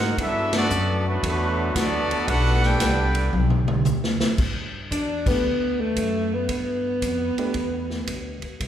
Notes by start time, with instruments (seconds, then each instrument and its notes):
Already playing: upright bass G#2, trombone section C3 A#3 C4 D#4 F#4 G#4, trumpet section D#4 A#4 C5 F#5
0.17 upright bass G2, trombone section E3 F#3 A3 B3 E4 F#4, trumpet section D4 A4 B4 E5, kick, ride
0.53 trombone section F#3 B3 D4, trumpet section B3 F#4 A4 D5, snare, ride
0.70 upright bass F#2, hi-hat pedal
1.07 trombone section D3 F#3 B3, trumpet section A3 D4 F#4 B4
1.23 upright bass E2, trombone section D3 F#3 B3, trumpet section A3 D4 F#4 B4, kick, ride
1.75 upright bass D2, trombone section F#3 B3 D4, trumpet section B3 F#4 A4 D5, kick, snare, hi-hat pedal, ride
2.11 muted upright bass stroke, ride
2.27 upright bass B1, trombone section B3 D4 F#4 G4, trumpet section D4 A4 B4 F#5, kick, ride
2.45 snare
2.63 trombone section B3 D4 G4, trumpet section D4 A4 B4 G5, snare
2.80 upright bass C2, kick, snare, hi-hat pedal, ride
3.15 ride
3.33 upright bass B1, high tom
3.50 mid tom
3.68 mid tom
3.85 upright bass D2, hi-hat pedal, mid tom
4.04 snare
4.20 muted upright bass stroke, snare
4.38 upright bass G2, kick, crash
4.91 upright bass E2, saxophone section D4, kick, hi-hat pedal, ride
5.26 grand piano A3 D4 G4 B4, saxophone section B3, kick, crash
5.43 upright bass D2
5.80 saxophone section A3
5.96 upright bass F#2, kick, hi-hat pedal, ride
6.34 saxophone section B3
6.49 upright bass G2, kick, ride
7.02 upright bass F2, kick, hi-hat pedal, ride
7.37 grand piano A3 D4 G4 B4, muted upright bass stroke, ride
7.54 upright bass E2, kick, ride
7.90 snare
8.07 upright bass D2, kick, hi-hat pedal, ride
8.42 muted upright bass stroke, ride
8.60 upright bass C2, kick, ride